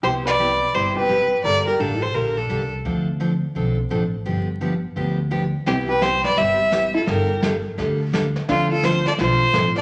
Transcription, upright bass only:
X:1
M:4/4
L:1/8
Q:"Swing" 1/4=170
K:C
V:1 name="Upright bass" clef=bass
C,,4 G,,,4 | G,,,2 A,,,2 _B,,,2 C,,2 | D,,4 B,,,2 A,,,2 | G,,,4 D,,4 |
C,,4 G,,,4 | G,,,4 D,,4 | D,,4 B,,,2 A,,,2 |]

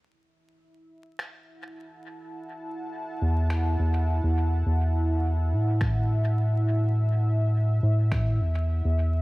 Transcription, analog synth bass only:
X:1
M:4/4
L:1/16
Q:"Swing 16ths" 1/4=104
K:Emix
V:1 name="Analog synth bass" clef=bass
z16 | z6 E,,4 E,,3 E,,3 | E,,6 A,,8- A,,2- | A,,6 A,,4 E,,3 E,,3 |]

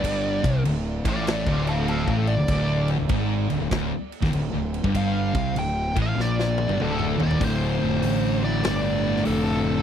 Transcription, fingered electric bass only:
X:1
M:4/4
L:1/16
Q:"Swing" 1/4=98
K:Dm
V:1 name="Fingered electric bass" clef=bass
G,,,2 C,,2 D,,,2 A,,,3 D,,,4 A,,,2 D,,, | D,,,3 D,,, ^G,,,2 D,,, D,,, D,,, z2 _E,,, D,,, D,,,2 =G,,,- | G,,,2 C,,2 D,,,2 A,,,2 B,,,3 G,,, D,,,2 _E,,,2 | D,,,2 F,,,2 A,,,4 G,,,4 F,,,4 |]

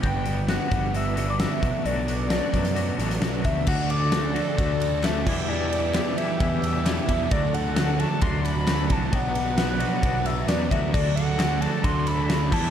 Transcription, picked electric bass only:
X:1
M:4/4
L:1/16
Q:1/4=132
K:Dmix
V:1 name="Picked electric bass" clef=bass
G,,,6 G,,,8 B,,, z | B,,,6 F,,4 A,,,2 B,,,2 D,,2 | D,,8 D,,6 E,,2- | E,,6 z2 E,,2 E,,4 E,,2 |
D,,8 D,,6 C,,2 | B,,,8 B,,,2 B,,,2 E,,2 D,,2 | D,,8 D,,6 E,,2 |]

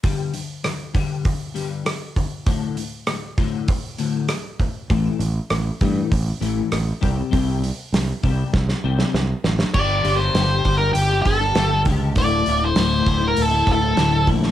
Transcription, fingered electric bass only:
X:1
M:4/4
L:1/8
Q:1/4=99
K:Gdor
V:1 name="Fingered electric bass" clef=bass
z8 | z8 | A,,, A,,, A,,, G,, A,,, A,,, A,,, C,, | C,,2 C,, C,, C,, C,, C,, A,,, |
G,,, G,,, G,,, G,,, G,,, G,,, G,,, ^C,, | D,,, D,,, D,,, D,,, D,,, D,,, D,,, B,,, |]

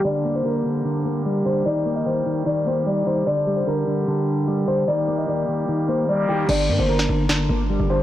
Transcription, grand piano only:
X:1
M:4/4
L:1/16
Q:1/4=149
K:Gm
V:1 name="Grand piano"
d3 c B8- B2 c2 | d3 e c4 d2 c2 d2 c2 | d3 c B8- B2 c2 | d3 e d6 c2 d2 G2 |
d3 c B8- B2 c2 |]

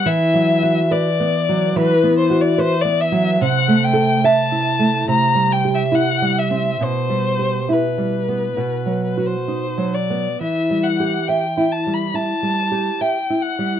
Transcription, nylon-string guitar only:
X:1
M:4/4
L:1/8
Q:1/4=70
K:Em
V:1 name="Nylon-string guitar"
(3E, F, F (3B B, F, (3E, B, F (3B B, F, | (3C, A, A (3e E A, (3C, G, G (3E G, C | (3B,, G, G (3E G, B, (3B,, F, F (3^D F, B, | (3E, G, G (3e E G, (3E G, G (3e E G, |]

